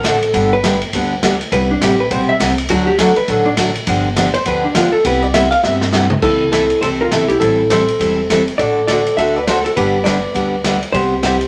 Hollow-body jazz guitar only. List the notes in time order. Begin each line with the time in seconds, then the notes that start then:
0.05 A4
0.53 B4
1.53 B4
1.71 D4
1.83 G4
2.00 B4
2.12 C5
2.29 E5
2.70 F#4
2.87 G4
3.01 A4
3.17 B4
3.29 A4
3.45 D4
4.34 C5
4.48 B4
4.65 D4
4.76 F4
4.92 A4
5.06 B4
5.22 D5
5.34 E5
5.51 F5
5.64 E5
6.23 E4 A4
6.52 E4 A4
6.81 A4 C5
7.01 F4 A#4
7.12 E4 A4
7.28 E4 G4
7.40 E4 A4
7.70 A4 C5
8.58 A4 D5
8.87 A4 D5
9.17 A4 E5
9.36 B4 D5
9.48 A4 C5
9.64 F#4 A4
9.76 G4 B4
10.04 B4 D5
10.92 G4 C5
11.23 G4 C5